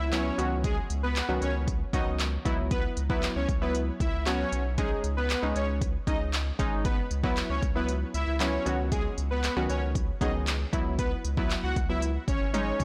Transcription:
0.00 analog synth bass C#2
0.12 synth pluck F#3 B3 E4, supersaw synth C#4 C#5, clap, closed hi-hat
0.38 analog synth bass C#2, synth pluck D#3 F#3 B3 C#4 F#4, closed hi-hat
0.64 supersaw synth G#3 G#4, kick, closed hi-hat
0.90 analog synth bass C#2, closed hi-hat
1.03 supersaw synth B3 B4
1.16 clap, closed hi-hat
1.29 analog synth bass C#2, synth pluck D#3 F#3 B3 C#4 F#4
1.42 analog synth bass C#2, supersaw synth C#4 C#5, closed hi-hat
1.68 kick, closed hi-hat
1.93 analog synth bass C#2, synth pluck D#3 F#3 B3 C#4 F#4, supersaw synth D#4 D#5, kick, closed hi-hat
2.06 analog synth bass C#2
2.19 clap, closed hi-hat
2.45 analog synth bass C#2, synth pluck F#3 B3 E4, kick, closed hi-hat
2.71 supersaw synth B3 B4, kick, closed hi-hat
2.97 analog synth bass C#2, closed hi-hat
3.10 synth pluck F#3 B3 E4, supersaw synth B3 B4, kick
3.23 clap, closed hi-hat
3.36 analog synth bass C#2, supersaw synth C#4 C#5
3.49 analog synth bass C#2, kick, closed hi-hat
3.61 synth pluck F#3 B3 E4, supersaw synth B3 B4
3.75 closed hi-hat
4.00 analog synth bass C#2, supersaw synth E4 E5, kick, closed hi-hat
4.13 analog synth bass C#2
4.26 synth pluck F#3 B3 F#4, supersaw synth C#4 C#5, clap, closed hi-hat
4.52 analog synth bass B1, closed hi-hat
4.78 synth pluck G#3 C#4 D#4, supersaw synth G#3 G#4, kick, closed hi-hat
5.04 analog synth bass C#2, closed hi-hat
5.17 supersaw synth B3 B4
5.30 clap, closed hi-hat
5.42 analog synth bass C#2, synth pluck G#3 C#4 D#4
5.56 analog synth bass C#2, supersaw synth C#4 C#5, closed hi-hat
5.81 kick, closed hi-hat
6.07 analog synth bass C#2, synth pluck G#3 C#4 D#4, supersaw synth D#4 D#5, kick, closed hi-hat
6.20 analog synth bass C#2
6.33 clap, closed hi-hat
6.59 analog synth bass G#1, synth pluck G#3 C#4 D#4, kick, closed hi-hat
6.85 supersaw synth B3 B4, kick, closed hi-hat
7.11 analog synth bass C#2, closed hi-hat
7.23 synth pluck F#3 B3 E4, supersaw synth B3 B4, kick
7.37 clap, closed hi-hat
7.50 analog synth bass C#2, supersaw synth C#4 C#5
7.62 analog synth bass C#2, kick, closed hi-hat
7.75 synth pluck F#3 B3 E4, supersaw synth B3 B4
7.89 closed hi-hat
8.14 analog synth bass C#2, supersaw synth E4 E5, closed hi-hat
8.27 analog synth bass C#2
8.40 synth pluck F#3 B3 E4, supersaw synth C#4 C#5, clap, closed hi-hat
8.66 analog synth bass C#2, synth pluck D#3 F#3 B3 C#4 F#4, closed hi-hat
8.92 supersaw synth G#3 G#4, kick, closed hi-hat
9.18 analog synth bass C#2, closed hi-hat
9.31 supersaw synth B3 B4
9.44 clap, closed hi-hat
9.56 analog synth bass C#2, synth pluck D#3 F#3 B3 C#4 F#4
9.69 analog synth bass C#2, supersaw synth C#4 C#5, closed hi-hat
9.95 kick, closed hi-hat
10.21 analog synth bass C#2, synth pluck D#3 F#3 B3 C#4 G#4, supersaw synth D#4 D#5, kick, closed hi-hat
10.34 analog synth bass C#2
10.47 clap, closed hi-hat
10.73 analog synth bass C#2, synth pluck F#3 B3 E4, kick, closed hi-hat
10.99 supersaw synth B3 B4, kick, closed hi-hat
11.25 analog synth bass C#2, closed hi-hat
11.37 synth pluck F#3 B3 E4, supersaw synth B3 B4, kick
11.50 clap, closed hi-hat
11.63 analog synth bass C#2, supersaw synth F#4 F#5
11.76 analog synth bass C#2, kick, closed hi-hat
11.89 synth pluck F#3 B3 E4, supersaw synth E4 E5
12.02 closed hi-hat
12.28 analog synth bass G#1, supersaw synth C#4 C#5, kick, closed hi-hat
12.41 analog synth bass G#1
12.54 synth pluck G#3 C#4 D#4, supersaw synth C#4 C#5, closed hi-hat, high tom
12.80 analog synth bass D#2, closed hi-hat, mid tom

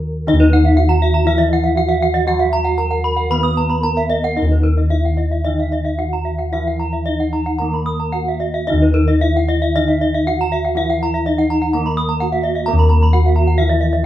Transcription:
Already playing: kettle gongs D#3, bronze metallophone A#4
0.27 bronze metallophone D#3 D#4 D#5, kettle gongs D#4
0.33 kettle gongs D#2
0.40 bronze metallophone B4
0.53 bronze metallophone F#5
0.65 bronze metallophone E5
0.77 bronze metallophone F#4 F#5
0.89 bronze metallophone A#5
1.02 bronze metallophone E5
1.14 bronze metallophone A#5
1.25 bronze metallophone E3 E4 E5
1.38 bronze metallophone D#5
1.53 bronze metallophone F#5
1.64 bronze metallophone E5
1.75 kettle gongs E4, bronze metallophone F#4 F#5
1.89 bronze metallophone E5
2.02 bronze metallophone F#5
2.14 bronze metallophone D#5
2.27 bronze metallophone F#3 F#5, kettle gongs F#4
2.39 bronze metallophone E5
2.53 bronze metallophone A#5
2.65 bronze metallophone F#5
2.78 kettle gongs E4, bronze metallophone A#4 A#5
2.91 bronze metallophone F#5
3.04 bronze metallophone B5
3.16 bronze metallophone F#5
3.29 kettle gongs D#3, bronze metallophone B3 B4 B5
3.43 bronze metallophone D#6
3.57 bronze metallophone A#5
3.70 bronze metallophone B5
3.81 kettle gongs E4, bronze metallophone A#4 A#5
3.97 bronze metallophone E5
4.10 bronze metallophone D#5
4.24 bronze metallophone F#5
4.36 bronze metallophone D#3 D#4 D#5, kettle gongs D#4
4.42 kettle gongs D#2
4.52 bronze metallophone B4
4.63 bronze metallophone A#4
4.77 bronze metallophone D#5
4.90 bronze metallophone E4 E5, kettle gongs E4
5.05 bronze metallophone F#5
5.17 bronze metallophone D#5
5.32 bronze metallophone E5
5.44 bronze metallophone D#3 D#4 D#5
5.60 bronze metallophone E5
5.72 bronze metallophone D#5
5.85 bronze metallophone E5
5.98 kettle gongs E4, bronze metallophone F#4 F#5
6.13 bronze metallophone A#5
6.25 bronze metallophone E5
6.39 bronze metallophone F#5
6.52 bronze metallophone E3 E4 E5, kettle gongs E4
6.67 bronze metallophone F#5
6.80 bronze metallophone A#5
6.93 bronze metallophone E5
7.06 bronze metallophone D#4 D#5, kettle gongs E4
7.20 bronze metallophone F#5
7.33 bronze metallophone A#5
7.46 bronze metallophone F#5
7.59 kettle gongs D#3, bronze metallophone A#3 A#4 A#5
7.74 bronze metallophone B5
7.86 bronze metallophone D#6
8.00 bronze metallophone A#5
8.12 kettle gongs E4, bronze metallophone F#4 F#5
8.28 bronze metallophone E5
8.40 bronze metallophone D#5
8.54 bronze metallophone E5
8.67 bronze metallophone D#3 D#4 D#5, kettle gongs D#4
8.73 kettle gongs D#2
8.82 bronze metallophone B4
8.94 bronze metallophone A#4
9.08 bronze metallophone D#5
9.21 bronze metallophone E4 E5
9.36 bronze metallophone F#5
9.48 bronze metallophone D#5
9.62 bronze metallophone E5
9.76 bronze metallophone D#3 D#4 D#5
9.88 bronze metallophone E5
10.01 bronze metallophone D#5
10.14 bronze metallophone E5
10.27 kettle gongs E4, bronze metallophone F#5
10.41 bronze metallophone A#5
10.52 bronze metallophone E5
10.65 bronze metallophone F#5
10.75 bronze metallophone E3 E4 E5, kettle gongs E4
10.90 bronze metallophone F#5
11.03 bronze metallophone A#5
11.14 bronze metallophone E5
11.26 bronze metallophone D#4 D#5, kettle gongs E4
11.38 bronze metallophone F#5
11.50 bronze metallophone A#5
11.62 bronze metallophone F#5
11.73 kettle gongs D#3, bronze metallophone A#3 A#4 A#5
11.86 bronze metallophone B5
11.97 bronze metallophone D#6
12.09 bronze metallophone A#5
12.20 kettle gongs E4, bronze metallophone F#4 F#5
12.32 bronze metallophone E5
12.44 bronze metallophone D#5
12.55 bronze metallophone E5
12.66 bronze metallophone A#3 A#4 A#5, kettle gongs A#4
12.73 kettle gongs D#2
12.79 bronze metallophone B5
12.89 bronze metallophone A#5
13.03 bronze metallophone B5
13.12 kettle gongs E4, bronze metallophone F#4 F#5
13.26 bronze metallophone E5
13.36 bronze metallophone A#5
13.47 bronze metallophone F#5
13.58 bronze metallophone E3 E4 E5
13.69 bronze metallophone D#5
13.81 bronze metallophone E5
13.93 bronze metallophone D#5

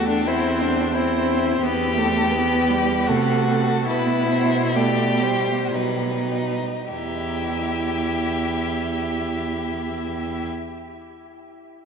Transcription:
Already playing: cello E2, viola A3, violin A4
0.09 violin D4
0.27 viola C4, violin E4 C5
0.61 violin D4
0.94 viola C4, violin E4 C5
1.62 cello E2, viola B3, violin G4 B4
1.97 viola A3, violin A4
2.34 viola B3, violin B4
2.70 viola G3
3.07 cello C3, viola A3, violin F#4 A4
3.48 violin A4
3.88 cello B2, viola B3, violin E4 B4
4.32 violin C5
4.75 viola A3, violin G4 D5
5.23 viola G3, violin C5
5.74 cello B2, viola F#3, violin D#4 B4
6.91 cello E2, viola E4, violin G4 E5

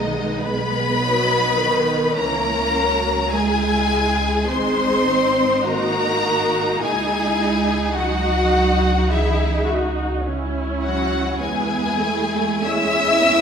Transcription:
Already playing: double bass section B1, cello section D#3, viola section G#3 B3, violin section D#4 D#5
0.41 cello section B3, violin section B4 B5
1.00 viola section F#3 D#4
1.58 viola section D#3
2.16 double bass section C#2, viola section E3 C#4, cello section A#3, violin section A#4 A#5
2.74 viola section F#3
3.32 viola section G#3 E4, cello section G#3, violin section G#4 G#5
4.47 double bass section G#1, viola section G#3 D#4, cello section C4, violin section C5 C6
5.06 viola section C4
5.65 cello section A#3, viola section D#4 F#4, violin section A#4 A#5
6.22 viola section F#4
6.81 double bass section C#2, cello section G#3, viola section E4, violin section G#4 G#5
7.95 cello section F#3, violin section F#4 F#5, viola section F#4
9.10 cello section E3, violin section E4 E5, viola section G#4
9.67 viola section F#4
10.23 viola section C#4 E4
10.83 cello section F#3, violin section F#4 F#5
11.40 double bass section E2, cello section G#3, viola section B3 E4, violin section G#4 G#5
12.01 viola section A3
12.64 viola section G#3 C#4, cello section E4, violin section E5 E6
13.24 viola section B3

